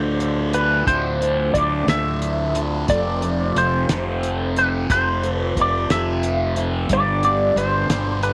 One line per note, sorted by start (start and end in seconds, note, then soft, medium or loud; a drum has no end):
0.00 0.82 D2 loud
0.00 0.85 D2 medium
0.00 0.55 A2 medium
0.00 0.52 D3 medium
0.00 6.86 A3 medium
0.00 2.83 D4 medium
0.00 6.86 F4 medium
0.00 0.54 C5 loud
0.00 2.83 D5 medium
0.20 closed hi-hat medium
0.53 0.87 A2 medium
0.53 0.88 D3 medium
0.53 0.85 B4 medium
0.53 closed hi-hat medium
0.86 1.53 D2 medium
0.86 1.50 D2 medium
0.86 1.21 A2 medium
0.86 1.19 D3 medium
0.86 1.56 C5 medium
0.86 kick loud
0.86 closed hi-hat medium
1.20 1.54 A2 medium
1.20 1.55 D3 medium
1.20 closed hi-hat medium
1.54 1.88 D2 medium
1.54 1.85 D2 medium
1.54 1.87 A2 medium
1.54 1.86 D3 medium
1.54 1.88 D5 medium
1.54 kick medium
1.54 closed hi-hat medium
1.87 2.84 D2 medium
1.87 2.87 D2 medium
1.87 2.56 A2 medium
1.87 2.53 D3 medium
1.87 2.60 E5 loud
1.87 snare loud
1.87 closed hi-hat medium
2.22 closed hi-hat medium
2.55 2.88 A2 medium
2.55 2.86 D3 medium
2.55 closed hi-hat medium
2.87 3.52 F1 medium
2.87 3.56 F2 medium
2.87 3.23 C3 medium
2.87 3.22 F3 medium
2.87 6.86 C4 medium
2.87 6.86 A4 medium
2.87 3.58 D5 medium
2.87 kick loud
2.87 closed hi-hat medium
3.22 3.57 C3 medium
3.22 3.58 F3 medium
3.22 closed hi-hat medium
3.56 3.86 F1 medium
3.56 3.92 F2 medium
3.56 3.90 C3 medium
3.56 3.89 F3 medium
3.56 4.58 C5 medium
3.56 closed hi-hat medium
3.89 4.85 F1 loud
3.89 4.90 F2 medium
3.89 4.59 C3 medium
3.89 4.56 F3 medium
3.89 snare loud
3.89 closed hi-hat medium
4.23 closed hi-hat medium
4.56 4.92 F3 medium
4.56 4.67 B4 medium
4.56 closed hi-hat medium
4.60 4.91 C3 medium
4.90 5.53 F1 medium
4.90 5.57 F2 medium
4.90 5.26 C3 medium
4.90 5.23 F3 medium
4.90 5.36 C5 medium
4.90 kick loud
4.90 closed hi-hat medium
5.24 5.58 C3 medium
5.24 5.59 F3 medium
5.24 closed hi-hat medium
5.36 5.53 B4 medium
5.57 5.87 F1 medium
5.57 5.92 F2 medium
5.57 5.91 C3 medium
5.57 5.90 F3 medium
5.57 kick medium
5.57 closed hi-hat medium
5.61 5.90 D5 medium
5.90 6.86 F1 medium
5.90 6.90 F2 medium
5.90 6.58 C3 medium
5.90 6.56 F3 medium
5.90 6.62 E5 medium
5.90 snare loud
5.90 closed hi-hat medium
6.23 closed hi-hat medium
6.56 6.89 C3 medium
6.56 6.88 F3 medium
6.56 closed hi-hat medium
6.86 8.33 B2 medium
6.86 8.33 D4 medium
6.86 8.33 G4 medium
6.86 8.33 D5 medium
6.86 closed hi-hat medium
6.90 7.53 G1 medium
6.90 7.56 G2 medium
6.90 7.25 D3 medium
6.90 7.23 D5 loud
6.90 kick loud
6.94 7.23 G3 medium
7.23 7.57 D3 medium
7.23 7.59 G3 medium
7.23 7.55 D5 medium
7.23 closed hi-hat medium
7.56 7.87 G1 medium
7.56 7.91 G2 medium
7.56 7.90 D3 medium
7.56 7.89 G3 medium
7.56 8.23 C5 medium
7.56 closed hi-hat medium
7.89 8.33 G1 loud
7.89 8.33 G2 medium
7.89 8.33 D3 medium
7.89 8.33 G3 medium
7.89 snare loud
7.89 closed hi-hat medium
8.23 8.33 B4 medium
8.23 closed hi-hat medium